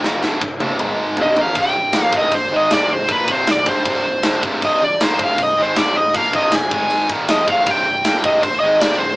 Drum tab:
CC |--------|x-x-x-x-|x-x-x-x-|x-x-x-x-|
SD |oo------|--o---o-|--o---o-|--o---o-|
T1 |---o----|--------|--------|--------|
T2 |----o---|--------|--------|--------|
FT |------oo|--------|--------|--------|
BD |--o-----|o--oo---|oo-oo--o|o--oo---|

CC |x-x-x-x-|x-x-x-x-|
SD |--o---o-|--o---o-|
T1 |--------|--------|
T2 |--------|--------|
FT |--------|--------|
BD |oo-o-o-o|o--oo---|